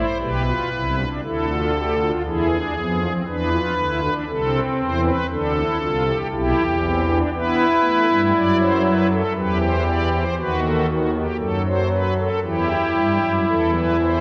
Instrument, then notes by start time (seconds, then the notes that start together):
pipe organ
Already playing: C5
0.20 B1 B2 G4 B4
0.47 F4
0.73 C2 C3 E4
0.99 D4
1.23 D2 D3 E4 A4
1.49 F4
1.74 G4
2.00 F4
2.25 E2 E3 E4 G#4
2.51 D4
2.78 F2 F3 B3
3.02 C4
3.27 E2 E3 D4 B4
3.52 F4
3.78 D2 D3 E4
4.03 D4
4.28 C2 C3 C4 A4
4.79 E2 E3 C5
5.05 B4
5.30 D2 D3 D4 A4
5.56 E4
5.81 C2 C3 F4
6.06 G4
6.31 B1 B2 E4 G4
6.56 E2 E3
6.82 C4
7.07 D4
7.33 B3 E4 B4
7.83 A3
8.10 G2 G3
8.35 F#2 F#3 D5
8.60 C5
8.85 B4
9.10 A4
9.35 E2 E3 G4 B4
9.60 C5
9.86 D5
10.12 C5
10.37 D#2 D#3 F#4 B4
10.64 A4
10.88 F#4
11.14 G4
11.38 F#2 F#3 A4
11.65 C5
11.91 B4
12.17 A4
12.42 E2 E3 E4 G4
12.95 G2 G3
13.22 F#2 F#3
13.48 E2 E3 A4
13.74 B4
14.01 C5